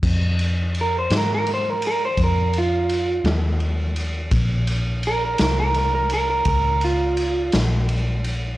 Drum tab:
CC |x-----------|------------|
RD |-xxxxxxxxxxx|xxxxxxxxxxxx|
SD |---o-----o--|---o-----o--|
BD |o-----o-----|o-----o-----|